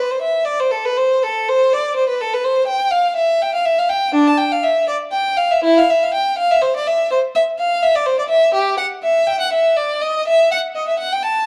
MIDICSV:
0, 0, Header, 1, 2, 480
1, 0, Start_track
1, 0, Tempo, 498339
1, 1660, Tempo, 485437
1, 2606, Time_signature, 12, 3, 24, 8
1, 5020, Tempo, 515464
1, 5980, Tempo, 478851
1, 8380, Tempo, 489796
1, 11237, End_track
2, 0, Start_track
2, 0, Title_t, "Violin"
2, 0, Program_c, 0, 40
2, 103, Note_on_c, 0, 72, 63
2, 207, Note_on_c, 0, 76, 63
2, 218, Note_off_c, 0, 72, 0
2, 436, Note_on_c, 0, 74, 67
2, 447, Note_off_c, 0, 76, 0
2, 568, Note_off_c, 0, 74, 0
2, 578, Note_on_c, 0, 72, 64
2, 686, Note_on_c, 0, 69, 63
2, 701, Note_off_c, 0, 72, 0
2, 816, Note_off_c, 0, 69, 0
2, 818, Note_on_c, 0, 71, 70
2, 936, Note_on_c, 0, 72, 67
2, 943, Note_off_c, 0, 71, 0
2, 1182, Note_off_c, 0, 72, 0
2, 1185, Note_on_c, 0, 69, 66
2, 1424, Note_off_c, 0, 69, 0
2, 1434, Note_on_c, 0, 72, 78
2, 1664, Note_off_c, 0, 72, 0
2, 1667, Note_on_c, 0, 74, 69
2, 1895, Note_on_c, 0, 72, 64
2, 1902, Note_off_c, 0, 74, 0
2, 2013, Note_off_c, 0, 72, 0
2, 2024, Note_on_c, 0, 71, 60
2, 2136, Note_off_c, 0, 71, 0
2, 2138, Note_on_c, 0, 69, 67
2, 2254, Note_off_c, 0, 69, 0
2, 2267, Note_on_c, 0, 71, 60
2, 2372, Note_on_c, 0, 72, 69
2, 2377, Note_off_c, 0, 71, 0
2, 2596, Note_on_c, 0, 79, 78
2, 2606, Note_off_c, 0, 72, 0
2, 2835, Note_off_c, 0, 79, 0
2, 2835, Note_on_c, 0, 77, 79
2, 3081, Note_on_c, 0, 76, 73
2, 3084, Note_off_c, 0, 77, 0
2, 3324, Note_off_c, 0, 76, 0
2, 3335, Note_on_c, 0, 79, 78
2, 3454, Note_off_c, 0, 79, 0
2, 3464, Note_on_c, 0, 77, 73
2, 3569, Note_on_c, 0, 76, 76
2, 3575, Note_off_c, 0, 77, 0
2, 3689, Note_off_c, 0, 76, 0
2, 3701, Note_on_c, 0, 77, 68
2, 3804, Note_on_c, 0, 79, 80
2, 3814, Note_off_c, 0, 77, 0
2, 4046, Note_off_c, 0, 79, 0
2, 4053, Note_on_c, 0, 62, 83
2, 4170, Note_off_c, 0, 62, 0
2, 4183, Note_on_c, 0, 81, 74
2, 4284, Note_on_c, 0, 79, 70
2, 4298, Note_off_c, 0, 81, 0
2, 4410, Note_off_c, 0, 79, 0
2, 4425, Note_on_c, 0, 77, 68
2, 4538, Note_on_c, 0, 76, 67
2, 4542, Note_off_c, 0, 77, 0
2, 4778, Note_on_c, 0, 74, 67
2, 4779, Note_off_c, 0, 76, 0
2, 4857, Note_off_c, 0, 74, 0
2, 5016, Note_on_c, 0, 79, 81
2, 5252, Note_on_c, 0, 77, 77
2, 5253, Note_off_c, 0, 79, 0
2, 5380, Note_off_c, 0, 77, 0
2, 5384, Note_on_c, 0, 76, 76
2, 5503, Note_on_c, 0, 64, 91
2, 5509, Note_off_c, 0, 76, 0
2, 5627, Note_off_c, 0, 64, 0
2, 5631, Note_on_c, 0, 77, 81
2, 5744, Note_on_c, 0, 76, 72
2, 5750, Note_off_c, 0, 77, 0
2, 5862, Note_off_c, 0, 76, 0
2, 5862, Note_on_c, 0, 77, 75
2, 5970, Note_on_c, 0, 79, 73
2, 5977, Note_off_c, 0, 77, 0
2, 6210, Note_off_c, 0, 79, 0
2, 6211, Note_on_c, 0, 77, 81
2, 6333, Note_off_c, 0, 77, 0
2, 6338, Note_on_c, 0, 76, 82
2, 6446, Note_on_c, 0, 72, 74
2, 6460, Note_off_c, 0, 76, 0
2, 6574, Note_off_c, 0, 72, 0
2, 6591, Note_on_c, 0, 74, 71
2, 6703, Note_on_c, 0, 76, 77
2, 6704, Note_off_c, 0, 74, 0
2, 6943, Note_off_c, 0, 76, 0
2, 6943, Note_on_c, 0, 72, 75
2, 7023, Note_off_c, 0, 72, 0
2, 7182, Note_on_c, 0, 76, 84
2, 7262, Note_off_c, 0, 76, 0
2, 7418, Note_on_c, 0, 77, 73
2, 7654, Note_off_c, 0, 77, 0
2, 7659, Note_on_c, 0, 76, 75
2, 7779, Note_off_c, 0, 76, 0
2, 7785, Note_on_c, 0, 74, 69
2, 7890, Note_on_c, 0, 72, 70
2, 7901, Note_off_c, 0, 74, 0
2, 8013, Note_off_c, 0, 72, 0
2, 8019, Note_on_c, 0, 74, 66
2, 8066, Note_off_c, 0, 74, 0
2, 8120, Note_on_c, 0, 76, 84
2, 8366, Note_off_c, 0, 76, 0
2, 8373, Note_on_c, 0, 67, 84
2, 8605, Note_on_c, 0, 78, 77
2, 8611, Note_off_c, 0, 67, 0
2, 8683, Note_off_c, 0, 78, 0
2, 8852, Note_on_c, 0, 76, 77
2, 9088, Note_off_c, 0, 76, 0
2, 9091, Note_on_c, 0, 79, 91
2, 9213, Note_off_c, 0, 79, 0
2, 9219, Note_on_c, 0, 78, 74
2, 9335, Note_off_c, 0, 78, 0
2, 9342, Note_on_c, 0, 76, 74
2, 9577, Note_on_c, 0, 74, 79
2, 9578, Note_off_c, 0, 76, 0
2, 9819, Note_on_c, 0, 75, 76
2, 9824, Note_off_c, 0, 74, 0
2, 10067, Note_off_c, 0, 75, 0
2, 10073, Note_on_c, 0, 76, 87
2, 10307, Note_off_c, 0, 76, 0
2, 10308, Note_on_c, 0, 78, 78
2, 10386, Note_off_c, 0, 78, 0
2, 10541, Note_on_c, 0, 75, 64
2, 10657, Note_off_c, 0, 75, 0
2, 10669, Note_on_c, 0, 76, 58
2, 10774, Note_on_c, 0, 78, 76
2, 10781, Note_off_c, 0, 76, 0
2, 10894, Note_off_c, 0, 78, 0
2, 10906, Note_on_c, 0, 79, 71
2, 11007, Note_on_c, 0, 81, 79
2, 11022, Note_off_c, 0, 79, 0
2, 11237, Note_off_c, 0, 81, 0
2, 11237, End_track
0, 0, End_of_file